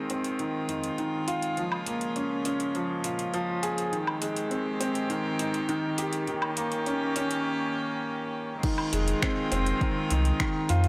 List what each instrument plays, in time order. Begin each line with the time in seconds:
Already playing: string quartet D#3 G#3 C4 F4, grand piano G#3 C4
0.10 sub bass F1, grand piano C4, closed hi-hat
0.24 closed hi-hat
0.39 grand piano D#3, closed hi-hat
0.68 sub bass F2, grand piano D#4, closed hi-hat
0.84 closed hi-hat
0.98 grand piano D#3, closed hi-hat
1.27 sub bass F1, grand piano F4, closed hi-hat
1.42 closed hi-hat
1.57 string quartet C#3 A#3, grand piano F3, closed hi-hat
1.72 low woodblock
1.86 sub bass A#1, grand piano A#3, closed hi-hat
2.01 closed hi-hat
2.16 grand piano C#4, closed hi-hat
2.45 sub bass A#1, grand piano C#4, closed hi-hat
2.60 closed hi-hat
2.75 grand piano F3, closed hi-hat
3.04 sub bass A#2, grand piano F4, closed hi-hat
3.19 closed hi-hat
3.34 grand piano F3, closed hi-hat
3.63 sub bass A#1, grand piano G#4, closed hi-hat
3.78 closed hi-hat
3.92 grand piano D#3, string quartet D#3 G#3 C4 G4, closed hi-hat
4.07 low woodblock
4.21 sub bass G#1, grand piano G#3, closed hi-hat
4.36 closed hi-hat
4.51 grand piano C4, closed hi-hat
4.80 sub bass G#1, grand piano C4, closed hi-hat
4.95 closed hi-hat
5.10 grand piano D#3, closed hi-hat
5.39 sub bass G#2, grand piano D#4, closed hi-hat
5.54 closed hi-hat
5.69 grand piano D#3, closed hi-hat
5.98 sub bass G#1, grand piano G4, closed hi-hat
6.13 closed hi-hat
6.27 grand piano D#3, string quartet A#3 C#4 G4, closed hi-hat
6.42 low woodblock
6.57 sub bass G1, grand piano A#3, closed hi-hat
6.72 closed hi-hat
6.86 grand piano C#4, closed hi-hat
7.16 sub bass G1, grand piano C#4, closed hi-hat
7.31 closed hi-hat
8.63 string quartet D#3 G#3 C4 F4, grand piano D#3, kick, closed hi-hat, crash
8.78 low woodblock
8.93 sub bass F1, grand piano G#3, closed hi-hat
9.08 closed hi-hat
9.22 grand piano C4, finger snap, kick, closed hi-hat
9.52 sub bass F1, grand piano C4, closed hi-hat
9.66 closed hi-hat
9.81 grand piano D#3, kick, closed hi-hat
10.10 sub bass C2, grand piano D#4, closed hi-hat
10.25 closed hi-hat
10.40 grand piano D#3, finger snap, kick, closed hi-hat
10.69 sub bass F2, grand piano F4, closed hi-hat
10.84 closed hi-hat